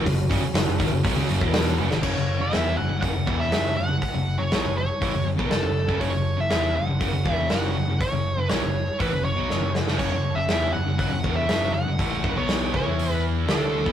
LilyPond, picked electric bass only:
\new Staff \with { instrumentName = "Picked electric bass" } { \clef bass \time 4/4 \key fis \minor \tempo 4 = 121 fis,,8 fis,,16 r16 fis,,16 fis,,16 gis,,16 fis,,16 b,,16 cis,16 fis,,16 e,,8. fis,,16 gis,,16 | fis,,16 fis,,8 fis,,16 e,8 fis,,16 fis,,16 fis,,16 fis,,16 e,,8 fis,,8 fis,,16 fis,,16 | r16 fis,,8 fis,,16 b,,16 fis,,8 r16 a,,16 fis,,16 fis,,16 b,,16 fis,,16 fis,,8 fis,,16 | fis,,16 fis,,8 fis,,16 e,8 fis,,16 fis,,16 fis,,16 fis,,16 e,,8 fis,,8 fis,,16 fis,,16 |
r16 fis,,8 fis,,16 b,,16 fis,,8 r16 a,,16 fis,,16 fis,,16 b,,16 fis,,16 fis,,8 fis,,16 | fis,,16 fis,,8 fis,,16 e,8 fis,,16 fis,,16 fis,,16 fis,,16 e,,8 fis,,8 fis,,16 fis,,16 | a,,8 fis,,16 b,,8. cis,16 e,4~ e,16 d,8. e,16 | }